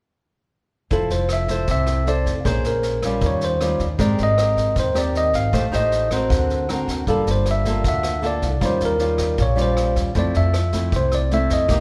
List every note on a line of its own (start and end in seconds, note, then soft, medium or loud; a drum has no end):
0.90 1.09 F1 medium
0.90 1.66 F3 medium
0.90 1.46 E4 medium
0.90 1.46 A4 medium
0.90 1.10 A4 medium
0.90 1.46 C5 medium
0.90 kick medium
0.90 snare soft
1.10 1.64 F1 medium
1.10 1.31 C5 medium
1.10 snare soft
1.29 cross-stick medium
1.29 snare soft
1.33 1.67 E5 medium
1.48 2.04 E4 medium
1.48 2.04 A4 medium
1.48 2.05 C5 medium
1.48 kick soft
1.48 snare soft
1.67 2.22 C2 medium
1.67 2.44 C3 medium
1.67 2.10 E5 medium
1.67 kick medium
1.67 snare soft
1.87 cross-stick medium
1.87 snare soft
2.07 2.32 E4 medium
2.07 2.32 A4 medium
2.07 2.32 C5 medium
2.07 2.47 D5 medium
2.07 snare soft
2.26 2.44 F1 medium
2.26 kick soft
2.26 snare soft
2.45 2.63 A#1 medium
2.45 3.04 A#3 medium
2.45 3.00 C#4 medium
2.45 3.00 G#4 medium
2.45 3.00 C5 medium
2.45 2.66 C5 medium
2.45 kick medium
2.45 cross-stick medium
2.45 snare soft
2.64 3.19 A#1 medium
2.64 3.25 A#4 medium
2.64 snare soft
2.83 snare soft
3.02 3.58 G3 medium
3.02 3.59 C#4 medium
3.02 3.59 F4 medium
3.02 kick soft
3.02 cross-stick medium
3.02 snare soft
3.21 3.76 D#2 medium
3.21 3.97 D#3 soft
3.21 kick medium
3.21 snare soft
3.26 3.44 C#5 medium
3.41 3.79 C5 medium
3.41 snare soft
3.61 3.86 G3 medium
3.61 3.86 C#4 medium
3.61 3.86 F4 medium
3.61 cross-stick medium
3.61 snare soft
3.79 3.98 D#2 medium
3.79 kick soft
3.79 snare soft
3.98 4.17 G#1 medium
3.98 4.74 G#3 medium
3.98 4.35 C4 medium
3.98 4.35 G4 medium
3.98 4.35 A#4 medium
3.98 4.20 D5 medium
3.98 kick medium
3.98 snare soft
4.18 4.73 G#1 medium
4.18 snare soft
4.23 4.75 D#5 medium
4.38 4.93 C4 medium
4.38 4.93 G4 medium
4.38 4.93 A#4 soft
4.38 cross-stick medium
4.38 snare soft
4.57 kick soft
4.57 snare soft
4.76 5.30 D#2 medium
4.76 5.51 D#3 soft
4.76 4.96 C5 medium
4.76 kick medium
4.76 snare soft
4.94 5.51 C4 medium
4.94 5.52 G4 medium
4.94 5.52 A#4 medium
4.94 5.17 D5 medium
4.94 cross-stick medium
4.94 snare soft
5.15 5.34 D#5 loud
5.15 snare soft
5.33 5.52 G#1 medium
5.33 5.75 F5 loud
5.33 kick soft
5.33 snare soft
5.52 5.71 A1 medium
5.52 6.28 A3 medium
5.52 5.65 D#4 medium
5.52 5.65 G4 soft
5.52 5.65 C5 medium
5.52 kick medium
5.52 cross-stick medium
5.52 snare soft
5.72 6.27 A1 medium
5.72 6.08 D#4 medium
5.72 6.08 G4 medium
5.72 6.08 C5 medium
5.72 6.10 D#5 medium
5.72 snare soft
5.92 snare soft
6.11 6.66 C4 medium
6.11 6.66 F#4 medium
6.11 6.66 A#4 medium
6.11 6.85 C5 medium
6.11 kick soft
6.11 cross-stick medium
6.11 snare soft
6.30 6.84 D2 medium
6.30 7.06 D3 medium
6.30 kick medium
6.30 snare soft
6.50 snare soft
6.69 7.05 C4 medium
6.69 7.05 F#4 medium
6.69 7.05 A#4 medium
6.69 cross-stick medium
6.69 snare soft
6.88 7.06 D2 medium
6.88 kick soft
6.88 snare soft
7.07 7.25 G1 medium
7.07 7.83 G3 medium
7.07 7.62 A#3 medium
7.07 7.63 F4 medium
7.07 7.63 A4 medium
7.07 7.29 A4 medium
7.07 kick soft
7.07 snare soft
7.27 7.81 G1 medium
7.27 snare soft
7.31 7.47 C5 medium
7.46 cross-stick medium
7.46 snare soft
7.51 7.85 E5 medium
7.65 8.21 A#3 medium
7.65 8.21 F4 medium
7.65 8.21 A4 medium
7.65 kick soft
7.65 snare soft
7.84 8.38 D2 medium
7.84 8.60 D3 soft
7.84 kick medium
7.84 snare soft
7.88 8.26 E5 medium
8.03 cross-stick medium
8.03 snare soft
8.22 8.47 A#3 medium
8.22 8.48 F4 medium
8.22 8.48 A4 medium
8.22 snare soft
8.27 8.65 D5 loud
8.42 8.60 C2 medium
8.42 kick soft
8.42 snare soft
8.61 8.80 D#2 medium
8.61 9.36 D#3 medium
8.61 8.97 G3 medium
8.61 8.97 C#4 medium
8.61 8.97 F4 medium
8.61 kick medium
8.61 cross-stick medium
8.61 snare soft
8.66 8.82 C5 medium
8.80 9.35 D#2 medium
8.80 snare soft
8.85 9.43 A#4 medium
8.99 9.38 G3 medium
8.99 9.39 C#4 soft
8.99 9.39 F4 medium
8.99 snare soft
9.18 kick soft
9.18 cross-stick medium
9.18 snare soft
9.38 9.93 A#1 medium
9.38 10.14 A#2 medium
9.38 kick medium
9.38 snare soft
9.42 9.59 C#5 medium
9.56 10.12 G3 medium
9.56 10.12 C#4 medium
9.56 10.12 F4 medium
9.56 snare soft
9.62 9.96 C5 medium
9.77 cross-stick medium
9.77 snare soft
9.96 10.14 D#2 medium
9.96 kick soft
9.96 snare soft
10.15 10.34 F2 medium
10.15 10.90 F3 medium
10.15 10.54 A3 medium
10.15 10.54 C4 soft
10.15 10.54 E4 medium
10.15 10.35 D5 medium
10.15 kick medium
10.15 snare soft
10.34 10.89 F2 medium
10.34 10.95 E5 medium
10.34 snare soft
10.54 cross-stick medium
10.54 snare soft
10.73 11.28 A3 medium
10.73 11.28 C4 medium
10.73 11.28 E4 medium
10.73 kick soft
10.73 snare soft
10.92 11.46 C2 medium
10.92 11.68 C3 soft
10.92 kick medium
10.92 snare soft
10.96 11.14 C5 medium
11.12 11.31 D5 medium
11.12 cross-stick medium
11.12 snare soft
11.31 11.69 A3 medium
11.31 11.69 C4 medium
11.31 11.69 E4 medium
11.31 11.51 E5 medium
11.31 snare soft
11.50 11.68 F2 medium
11.50 11.80 D#5 medium
11.50 kick soft
11.50 snare soft
11.68 11.80 C2 medium
11.68 11.80 C3 medium
11.68 11.80 A#3 medium
11.68 11.80 D#4 soft
11.68 11.80 G4 medium
11.68 kick medium
11.68 cross-stick medium
11.68 snare soft